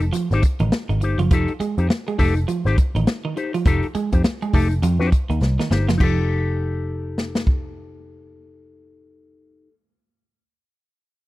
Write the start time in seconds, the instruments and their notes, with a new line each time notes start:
0.02 muted clean electric guitar stroke, closed hi-hat
0.13 clean electric guitar F3, muted clean electric guitar stroke, closed hi-hat
0.31 picked electric bass G#1, clean electric guitar D#4 G4 C5, snare, closed hi-hat
0.43 muted clean electric guitar stroke, kick, closed hi-hat
0.60 picked electric bass A1, clean electric guitar D#3, muted clean electric guitar stroke, closed hi-hat
0.72 muted clean electric guitar stroke, snare
0.89 picked electric bass G#1, clean electric guitar D#3, closed hi-hat
1.01 picked electric bass G1, clean electric guitar D#4 G4 C5, muted clean electric guitar stroke, closed hi-hat
1.18 picked electric bass F#1, clean electric guitar F3, closed hi-hat
1.31 picked electric bass F1, clean electric guitar F3 D#4 G4 A4, kick, closed hi-hat
1.48 muted clean electric guitar stroke, closed hi-hat
1.60 clean electric guitar G#3, muted picked electric bass stroke, muted clean electric guitar stroke, closed hi-hat
1.78 picked electric bass F2, clean electric guitar D#4 G4 C5, closed hi-hat
1.89 muted clean electric guitar stroke, snare
2.07 clean electric guitar G#3, muted clean electric guitar stroke, closed hi-hat
2.18 picked electric bass F1, clean electric guitar A3 D#4 G4 A4, kick, open hi-hat
2.37 muted clean electric guitar stroke, closed hi-hat
2.48 clean electric guitar F3, muted clean electric guitar stroke, closed hi-hat
2.65 picked electric bass G#1, clean electric guitar D#4 G4 C5, snare, closed hi-hat
2.78 muted clean electric guitar stroke, kick, closed hi-hat
2.95 picked electric bass A1, clean electric guitar D#3, muted clean electric guitar stroke, closed hi-hat
3.07 muted clean electric guitar stroke, snare
3.25 clean electric guitar D#3
3.37 clean electric guitar D#4 G4 C5, muted clean electric guitar stroke, closed hi-hat
3.54 clean electric guitar F3, muted clean electric guitar stroke, closed hi-hat
3.65 picked electric bass F1, clean electric guitar F3 D#4 G4 A4, kick, closed hi-hat
3.83 muted clean electric guitar stroke, closed hi-hat
3.95 clean electric guitar G#3, muted picked electric bass stroke, muted clean electric guitar stroke, closed hi-hat
4.12 picked electric bass F2, clean electric guitar D#4 G4 C5, kick, closed hi-hat
4.24 muted clean electric guitar stroke, snare
4.42 clean electric guitar G#3, muted clean electric guitar stroke, closed hi-hat
4.53 picked electric bass F1, clean electric guitar A3 D#4 G4 A4, kick, open hi-hat
4.70 muted clean electric guitar stroke, closed hi-hat
4.82 picked electric bass F2, clean electric guitar F3, muted clean electric guitar stroke, closed hi-hat
4.99 picked electric bass F2, clean electric guitar D#4 G4 C5, snare
5.12 muted clean electric guitar stroke, kick, closed hi-hat
5.30 picked electric bass D#2, clean electric guitar D#3, muted clean electric guitar stroke, closed hi-hat
5.41 picked electric bass C2, muted clean electric guitar stroke, snare
5.59 clean electric guitar D#3, snare
5.71 picked electric bass G1, clean electric guitar D#4 G4 C5, muted clean electric guitar stroke, snare
5.88 picked electric bass F#1, clean electric guitar F3, muted clean electric guitar stroke, snare
5.98 picked electric bass F1, clean electric guitar F3 D#4 G4, kick, crash
6.03 clean electric guitar A4
7.18 snare
7.35 snare
7.47 kick